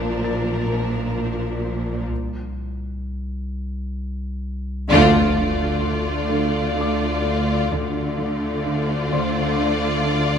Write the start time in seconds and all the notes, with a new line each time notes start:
Already playing: A#1 A#2 F3 D4 A#4
0.22 A#2 A6
0.69 A#2
1.16 A#3
1.63 A#3
2.09 C2
4.90 D2 D3 A3 F4 D5 C6, impact
5.38 D3
5.85 D3
6.32 D3
6.78 D4 D5 D6
7.25 D4
7.72 D2 D3 A3 F4 D5
8.18 D3
8.66 D3
9.13 D3 C5 C6
9.59 D4
10.06 D4